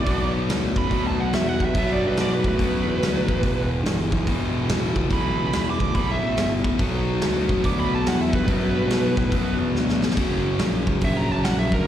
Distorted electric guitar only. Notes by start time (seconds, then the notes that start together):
0.05 B2 F#3 B3
0.89 B2 F#3
0.93 B3
1.73 B2 F#3 B3
2.58 B2 F#3 B3
3.41 E2 B2 E3
4.25 E2 B2
4.29 E3
5.09 E2 B2 E3
5.94 E2 B2 E3
6.78 B2 F#3 B3
7.63 B2 F#3 B3
8.46 B2 F#3 B3
9.31 B2 F#3 B3
10.16 F#2 C#3 F#3
11.02 F#2 C#3 F#3